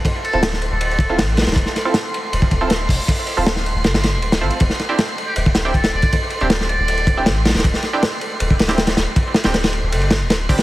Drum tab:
RD |x---x-x-x---x---x-x-x---x---xxxx|x---x---x---x---x---x---x-------|x---x-x-x---x---x-x-x---x-x---x-|x---x---x---x---x---x---x-x---x-|
HH |--------------------------------|----------------------------o---|--------------------------------|--------------------------------|
SD |--------o-o-------------o---oooo|--o-o---o---------------o-------|--------o-o-----o-o-o-----o-----|--o-o---o-----------o-----o-----|
BD |o-------------------o-----------|o-----------------o-o-------o---|o-------------------------------|o-----------------o-----o-----o-|

RD |x---x-x-x---x---x-x-x---x---xxxx|x---x---x---x---x---x-x-x-x-x---|x---x-x-x-x-x---x-x-x---x-----x-|
HH |--------------------------------|--------------------------------|----------------------------o---|
SD |--------o-o-------------o---oooo|--o-o---o-----------o-o-o-o-o---|----o-o-o-o---------o---o-----o-|
BD |o-------------------o-----------|o-----------------o-------------|o---------------------------o---|